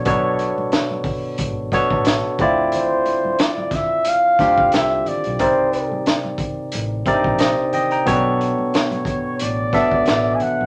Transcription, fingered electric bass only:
0.07 B1
1.40 G#1
1.92 A1
2.40 D2
4.40 D2
4.75 C2
5.27 B1
5.41 C2
6.75 A1
7.26 A#1
8.08 B1
9.42 A1
9.92 C#2
10.08 A1
10.61 A#1

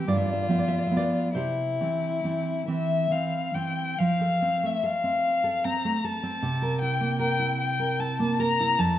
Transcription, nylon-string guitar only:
0.07 G2 D5
0.17 E5
0.26 D5
0.33 E5
0.42 D5
0.49 F3 B3 E5
0.58 D5
0.68 E5
0.78 D5
0.87 F3 E5
0.91 B3
0.97 B4 D5
1.35 C3 G4 C5
1.81 E3 C4
2.24 E3 C4
2.68 E3 C4
3.10 E3 C4
3.54 E3 C4
4.00 F3
4.21 A4
4.42 C4
4.63 A3
4.83 A4
5.04 C4
5.44 A4
5.65 C4
5.85 A3
6.04 A4
6.23 C4
6.43 C3
6.62 A#4
6.82 E4
7.01 A#3
7.19 A#4
7.39 E4
7.79 A#4
7.99 E4
8.20 A#3
8.39 A#4
8.60 E4
8.78 F2

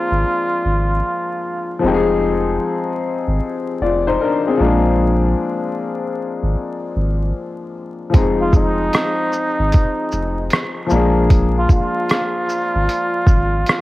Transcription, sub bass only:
0.11 G#1
0.65 G#1
1.83 F1
3.27 G#1
3.81 F1
4.60 A#1
6.42 G#1
6.96 G#1
8.14 F1
9.59 G#1
10.13 F1
10.91 A#1
12.75 G#1
13.27 G#1

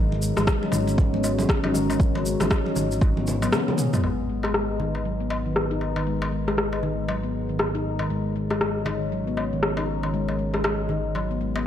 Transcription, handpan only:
0.23 G#3
0.37 G#3
0.48 G#3
0.74 D#4
0.99 F#3
1.14 B3
1.39 D#3
1.65 D#4
1.90 D#3
2.01 G#3
2.26 G#3
2.41 G#3
2.51 G#3
2.77 D#4
3.02 F#3
3.18 B3
3.43 B3
3.68 G#4
3.94 B3
4.04 G#3
4.30 G#3
4.44 G#3
4.55 G#3
4.80 D#4
5.05 F#3
5.20 B3
5.46 D#3
5.71 D#4
5.96 D#3
6.07 G#3
6.32 G#3
6.48 G#3
6.57 G#3
6.83 D#4
7.08 F#3
7.23 B3
7.49 D#3
7.75 D#4
8.00 D#3
8.10 G#3
8.36 G#3
8.51 G#3
8.61 G#3
8.87 D#4
9.12 F#3
9.27 B3
9.53 D#3
9.78 D#4
10.04 D#3
10.14 G#3
10.39 G#3
10.54 G#3
10.65 G#3
10.90 D#4
11.15 F#3
11.31 B3
11.41 G#3
11.56 B3

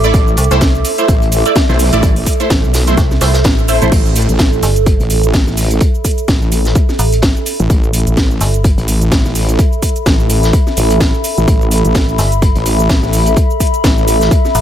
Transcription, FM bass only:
Already playing: A1
0.38 C2
0.51 C2
2.97 C2
3.21 C2
3.45 A1
4.63 G1
6.99 A1
8.41 G1
12.19 G1
14.55 A1

